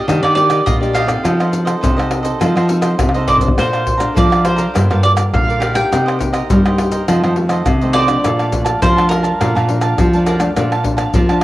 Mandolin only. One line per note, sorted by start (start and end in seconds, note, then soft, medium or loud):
0.00 0.20 D#5 medium
0.23 0.34 D5 medium
0.35 0.66 D5 medium
0.66 0.74 D#5 medium
0.94 1.79 F5 medium
3.28 3.36 D5 medium
3.59 4.17 C5 medium
4.18 4.44 D5 medium
4.45 5.00 C5 medium
5.03 5.11 D5 loud
5.34 5.74 F5 loud
5.75 6.30 G5 medium
7.93 8.77 D5 loud
8.82 9.09 C5 loud
9.09 11.44 A#4 medium